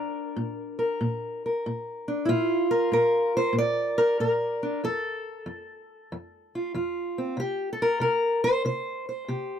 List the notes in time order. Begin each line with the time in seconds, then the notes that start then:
Already playing: A#2 D4 A#4
0.36 A#2
0.79 A#4
1.01 A#2
1.46 A#4
1.66 A#2
2.08 D4
2.25 A#2 E4 F4
2.71 A#4
2.92 A#2 A#4
3.37 C5
3.53 A#2
3.58 D5
3.98 A#4
4.20 A#2 A#4
4.63 D4
4.84 F2 A4
5.46 F2
6.12 F2
6.55 F4
6.74 F2 F4
7.18 C4
7.37 C3 G4
7.73 A4
7.82 A#4
8.00 C3 A#4
8.44 C5
8.65 C3 C5
9.09 C5
9.28 C3 G4